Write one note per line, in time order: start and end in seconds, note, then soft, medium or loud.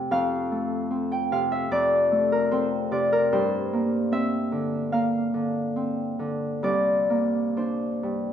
0.00 0.10 F2 medium
0.00 0.15 C3 soft
0.00 0.50 A3 soft
0.00 0.89 C4 soft
0.00 0.68 C5 medium
0.00 0.10 F5 medium
0.00 0.16 G5 medium
0.11 1.70 F2 medium
0.11 1.31 F5 medium
0.52 2.11 A3 soft
0.90 2.51 C4 soft
1.12 1.46 G5 medium
1.32 2.90 C3 soft
1.32 1.66 F5 medium
1.52 1.86 E5 medium
1.71 3.36 F2 medium
1.71 2.90 D5 medium
2.12 6.02 A3 soft
2.32 2.66 A#4 medium
2.51 4.11 C4 medium
2.51 3.31 C5 medium
2.91 3.36 C3 soft
2.91 6.62 D5 medium
3.12 3.47 A#4 medium
3.32 6.68 G2 medium
3.32 7.23 C5 medium
3.73 4.92 A#3 soft
4.12 5.75 C4 soft
4.12 5.51 E5 medium
4.52 5.33 D3 soft
4.92 7.09 A#3 soft
4.92 8.33 F5 medium
5.34 6.18 D3 soft
5.76 8.33 C4 soft
6.19 6.68 D3 soft
6.63 8.33 C2 medium
6.63 8.22 D5 medium
7.10 8.33 A#3 soft
7.57 8.33 D4 soft
7.57 8.33 C5 soft
8.03 8.33 G2 soft